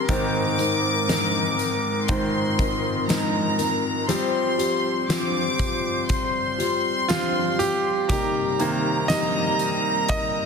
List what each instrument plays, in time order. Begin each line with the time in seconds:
Already playing: woodwind section C4 A#4
0.08 grand piano G#2 D#3 C4, steel-string acoustic guitar G#3 C4 D#4 A#4, woodwind section G#3 D#4, violin section D6, kick, closed hi-hat, tambourine
0.58 steel-string acoustic guitar C4 D#4 A#4, closed hi-hat, tambourine
1.08 steel-string acoustic guitar G#3 C4 D#4 A#4, snare, closed hi-hat, tambourine
1.59 closed hi-hat, tambourine
2.08 grand piano G#2 D#3 C4, woodwind section F4, violin section C6, kick, closed hi-hat
2.58 steel-string acoustic guitar C4 D#4 A#4, kick, closed hi-hat
3.07 steel-string acoustic guitar G#3 C4 D#4 A#4, violin section A#5, snare, closed hi-hat, tambourine
3.58 steel-string acoustic guitar C4 D#4 A#4, closed hi-hat, tambourine
4.08 steel-string acoustic guitar F3 C4 F4 G4, grand piano F3 G3 C4, woodwind section G3 F4 C5, violin section C6, closed hi-hat, tambourine
4.58 steel-string acoustic guitar C4 F4 G4, closed hi-hat, tambourine
5.08 steel-string acoustic guitar F3 C4 F4 G4, violin section D6, snare, closed hi-hat, tambourine
5.59 kick, closed hi-hat, tambourine
6.08 violin section C6, kick, closed hi-hat, tambourine
6.58 steel-string acoustic guitar C4 F4 G4, closed hi-hat
7.08 steel-string acoustic guitar F3 C4 F4 G4, grand piano F4, snare, closed hi-hat, tambourine
7.59 steel-string acoustic guitar C4 F4 G4, grand piano G4, closed hi-hat, tambourine
8.09 steel-string acoustic guitar C3 G3 A#3 D#4 G4, woodwind section C4 D#4 A#4, grand piano G4, violin section A#5, kick, closed hi-hat, tambourine
8.59 grand piano C3 D#3 A#3, steel-string acoustic guitar A#3 D#4 G4, closed hi-hat, tambourine
9.08 steel-string acoustic guitar G3 A#3 D#4 G4, grand piano D#5, snare, closed hi-hat, tambourine
9.59 closed hi-hat, tambourine
10.09 grand piano D#5, kick, closed hi-hat, tambourine